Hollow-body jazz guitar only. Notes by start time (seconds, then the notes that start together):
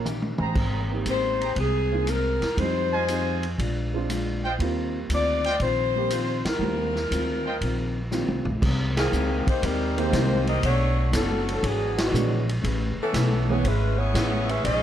0.04 D#3 A#3 C#4 G4
0.54 G#3 C4 G4 A#4
1.05 G#3 C4 G4 A#4
1.57 G#3 C4 G4 A#4
2.06 G#3 C4 G4 A#4
2.58 F3 C4 D#4 G#4
3.08 F3 C4 D#4 G#4
3.57 A#2 G#3 D4
3.61 F4
4.09 A#2 G#3 D4 F4
4.60 D#3 G3 C4 F4
5.10 D#3 G3 C4 F4
5.60 D#3 G3 C4 F4
6.11 D#3 G3 C4 F4
6.59 D#3 G3 C4 F4
7.11 D#3 G3 C4 F4
7.61 D#3 G3 C4 F4
8.11 D#3 G3 C4 F4
8.61 G#3 C4 G4 A#4
9.13 G#3 C4 G4 A#4
9.62 G#3 C4 G4
9.67 A#4
10.11 G#3 C4 G4 A#4
10.62 B3 D4 A4 C#5
11.11 B3 D4 A4 C#5
11.61 E3 D4 G#4 C#5
12.12 E3 D4 G#4 C#5
12.61 A3 C#4 G#4 B4
13.12 A3 C#4 G#4 B4
13.63 A3 C#4 G#4 B4
14.13 A3 C#4 G#4 B4
14.62 A#2 G#3 C#4 D#4